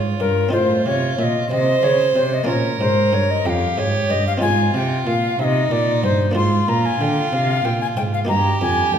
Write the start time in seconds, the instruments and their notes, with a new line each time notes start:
Already playing: harpsichord G#2 A#3 C#4 F4, cello G#2, violin F4
0.20 harpsichord G2, cello G2, recorder A#4
0.49 harpsichord C4 D#4 F4, recorder C5
0.53 harpsichord A2, cello A2, violin F4
0.86 cello C3, harpsichord C3, recorder C#5
1.18 cello A#2, harpsichord A#2, recorder E5
1.23 recorder D#5
1.51 cello C3, harpsichord C3, violin C5, recorder D#5
1.83 harpsichord C#3, cello C#3, recorder C#5
2.16 harpsichord C3, cello C3, recorder C5
2.34 recorder D#5
2.44 harpsichord A#3 C#4 F4, violin A#4
2.48 cello A#2, harpsichord A#2, recorder C#5
2.81 harpsichord G#2, cello G#2, recorder C5
3.13 harpsichord G2, cello G2, recorder C#5
3.31 recorder D#5
3.45 cello F2, harpsichord F2, violin G4, recorder G5
3.50 recorder F5
3.78 harpsichord G#2, cello G#2, recorder C#5
4.10 cello G2, harpsichord G2, recorder D#5
4.27 recorder F5
4.38 harpsichord C4 D#4 F4, recorder G#5
4.42 harpsichord G#2, cello G#2, violin F4
4.74 harpsichord C3, cello C3, recorder G5
5.07 harpsichord A#2, cello A#2, recorder F5
5.39 harpsichord C3, cello C3, violin D#4, recorder E5
5.44 recorder D#5
5.71 harpsichord A#2, cello A#2, recorder D5
6.04 cello G2, harpsichord G2, recorder C5
6.31 harpsichord A#3 D4 F4
6.36 cello G#2, harpsichord G#2, violin F4, recorder C6
6.68 cello A#2, harpsichord A#2, recorder A#5
6.86 recorder G#5
7.01 cello D3, harpsichord D3, recorder G5
7.33 cello C3, harpsichord C3, recorder F5
7.65 cello A#2, harpsichord A#2, recorder G5
7.81 recorder G#5
7.97 harpsichord G#2, cello G#2, recorder G5
8.14 recorder F5
8.25 harpsichord A#3 D#4 G4, violin G4, recorder A#5
8.29 cello G2, harpsichord G2
8.61 harpsichord F2, cello F2, recorder G#5
8.92 cello D2, harpsichord D2, recorder G5